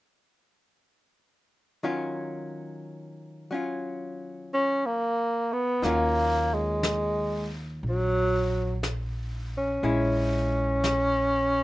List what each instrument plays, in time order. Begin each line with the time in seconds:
1.83 hollow-body jazz guitar D#3 F#3 C#4 F4
3.51 hollow-body jazz guitar F#3 C#4 F4
4.54 tenor saxophone C#4
4.86 tenor saxophone A#3
5.53 tenor saxophone B3
5.82 upright bass D#2, hollow-body jazz guitar D#3 F#3 C#4, tenor saxophone A#3, brush sweep, snare
5.87 hollow-body jazz guitar F4
6.54 tenor saxophone G#3
6.83 brush sweep, snare, hi-hat pedal
7.83 upright bass A#1, brush sweep
7.88 tenor saxophone F#3
8.83 brush sweep, snare, hi-hat pedal
9.58 tenor saxophone C#4
9.83 upright bass A#1, hollow-body jazz guitar G#3 C#4 E4, brush sweep
10.84 brush sweep, snare, hi-hat pedal